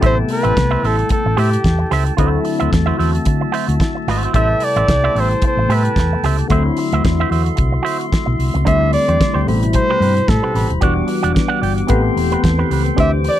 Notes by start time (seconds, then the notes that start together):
Already playing: A5
0.00 A1 B2 G3 A3 B3 E4 G4 A4 C5 E5 G5, kick, closed hi-hat
0.06 C3 C5
0.18 muted clean electric guitar stroke
0.29 B4, muted clean electric guitar stroke, open hi-hat
0.43 A1 G4 C5 E5, closed hi-hat
0.56 C2, muted clean electric guitar stroke, kick, snare, closed hi-hat
0.71 G4 C5 E5
0.83 A1 G4 A4 C5 E5, open hi-hat
0.98 muted clean electric guitar stroke, closed hi-hat
1.09 A4, muted clean electric guitar stroke, kick, closed hi-hat
1.26 A1, muted clean electric guitar stroke
1.37 A2 G4 C5 E5, open hi-hat
1.52 muted clean electric guitar stroke, closed hi-hat
1.64 E2, kick, snare, closed hi-hat
1.79 muted clean electric guitar stroke
1.91 C#2 G4 C5 E5, snare, open hi-hat
2.06 muted clean electric guitar stroke, closed hi-hat
2.17 D2 D3 F#3 A3 C4 E4 F#4 C5 E5, kick, closed hi-hat
2.32 muted clean electric guitar stroke
2.44 muted clean electric guitar stroke, open hi-hat
2.59 D2 F#4 C5 E5, closed hi-hat
2.73 E2, kick, snare, closed hi-hat
2.86 F#4 C5 E5
2.97 E2 F#4 C5 E5, open hi-hat
3.13 muted clean electric guitar stroke, closed hi-hat
3.25 D3, muted clean electric guitar stroke, kick, closed hi-hat
3.41 muted clean electric guitar stroke
3.52 F#4 C5 E5, open hi-hat
3.68 D2, muted clean electric guitar stroke, closed hi-hat
3.80 muted clean electric guitar stroke, kick, snare, closed hi-hat
3.95 muted clean electric guitar stroke
4.07 G#1 F#4 C5 E5, snare, open hi-hat
4.23 F#4 C5 E5, closed hi-hat
4.33 A1 C3 G3 A3 B3 E4 G4 A4 C5 E5 G5 A5, kick, closed hi-hat
4.51 muted clean electric guitar stroke
4.60 D5, muted clean electric guitar stroke, open hi-hat
4.76 A1 G4 C5 E5, closed hi-hat
4.88 C2, kick, snare, closed hi-hat
5.04 G4 C5 E5
5.15 A1 G4 C5 E5, open hi-hat
5.20 C5
5.31 muted clean electric guitar stroke, closed hi-hat
5.42 muted clean electric guitar stroke, kick, closed hi-hat
5.47 C5
5.57 A1, muted clean electric guitar stroke
5.69 A2 G4 C5 E5, open hi-hat
5.74 B4
5.85 muted clean electric guitar stroke, closed hi-hat
5.96 E2, muted clean electric guitar stroke, kick, snare, closed hi-hat
6.13 muted clean electric guitar stroke
6.23 C#2 G4 C5 E5, snare, open hi-hat
6.38 muted clean electric guitar stroke, closed hi-hat
6.48 D2 D3 F#3 A3 C4 E4 F#4 C5 E5 C6, kick, closed hi-hat
6.52 E5
6.66 muted clean electric guitar stroke
6.77 muted clean electric guitar stroke, open hi-hat
6.92 D2 F#4 C5 E5, closed hi-hat
7.05 E2, kick, snare, closed hi-hat
7.20 F#4 C5 E5
7.30 E2 F#4 C5 E5, open hi-hat
7.44 muted clean electric guitar stroke, closed hi-hat
7.56 C2, muted clean electric guitar stroke, kick, closed hi-hat
7.72 muted clean electric guitar stroke
7.83 F#4 C5 E5, open hi-hat
8.00 muted clean electric guitar stroke, closed hi-hat
8.12 muted clean electric guitar stroke, kick, snare, closed hi-hat
8.26 B1, muted clean electric guitar stroke
8.39 C2, open hi-hat
8.54 C#2, muted clean electric guitar stroke, closed hi-hat
8.65 D2 D3 G3 A3 C4 D4 E4 G4 C5 D5 E5 C6, kick, closed hi-hat
8.81 muted clean electric guitar stroke
8.92 D5, muted clean electric guitar stroke, open hi-hat
9.08 E2 D4 G4 C5, closed hi-hat
9.20 muted clean electric guitar stroke, kick, snare, closed hi-hat
9.34 D2 D4 G4 C5
9.46 A1 B2 G3 A3 C4 E4 G4 C5 B5, open hi-hat
9.52 C3
9.63 muted clean electric guitar stroke, closed hi-hat
9.73 C5, muted clean electric guitar stroke, kick, closed hi-hat
9.90 C4 G4 B4
10.00 G2 C4 G4 B4, open hi-hat
10.16 muted clean electric guitar stroke, closed hi-hat
10.28 A2 A4, muted clean electric guitar stroke, kick, snare, closed hi-hat
10.43 C4 G4 B4
10.54 A1 C4 G4 B4, snare, open hi-hat
10.70 D#1, muted clean electric guitar stroke, closed hi-hat
10.81 E1 E3 G3 B3 D4 F#4 G4 D5 F#5 D6, kick, closed hi-hat
10.96 muted clean electric guitar stroke
11.07 muted clean electric guitar stroke, open hi-hat
11.23 E1 G4 D5 F#5, closed hi-hat
11.33 muted clean electric guitar stroke, kick, snare, closed hi-hat
11.48 G4 D5 F#5
11.61 G1 G4 D5 G5, open hi-hat
11.76 muted clean electric guitar stroke, closed hi-hat
11.87 A1 E3 A3 B3 C4 G4 A4 B4 G5 C6, kick, closed hi-hat
12.04 muted clean electric guitar stroke
12.16 E1, muted clean electric guitar stroke, open hi-hat
12.32 C4 G4 B4, closed hi-hat
12.44 E2, kick, snare, closed hi-hat
12.59 C4 G4 B4
12.70 C#2 C4 G4 B4, open hi-hat
12.85 muted clean electric guitar stroke, closed hi-hat
12.96 D2 E3 A3 C4 D4 G4 C5 E5 D6, kick, closed hi-hat
13.12 muted clean electric guitar stroke
13.24 muted clean electric guitar stroke, open hi-hat
13.28 D5